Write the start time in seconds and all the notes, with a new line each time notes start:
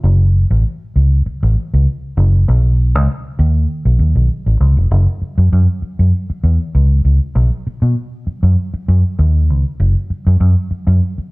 0.04 F#1
0.51 A1
0.96 C#2
1.26 muted fingered electric bass stroke
1.43 A1
1.74 C#2
2.17 F#1
2.49 B1
2.95 C#2
3.39 D#2
3.85 B1
3.99 D#2
4.16 B1
4.46 A1
4.61 C#2
4.77 F1
4.91 F#1
5.22 muted fingered electric bass stroke
5.38 F#2
5.53 F#2
5.82 muted fingered electric bass stroke
5.99 F#2
6.30 muted fingered electric bass stroke
6.44 E2
6.75 C#2
7.05 C#2
7.36 B1
7.67 muted fingered electric bass stroke
7.82 B2
8.27 muted fingered electric bass stroke
8.43 F#2
8.74 muted fingered electric bass stroke
8.88 F#2
9.19 D#2
9.50 C#2
9.80 F#1
10.10 muted fingered electric bass stroke
10.27 F#2
10.40 F#2
10.71 muted fingered electric bass stroke
10.87 F#2
11.18 muted fingered electric bass stroke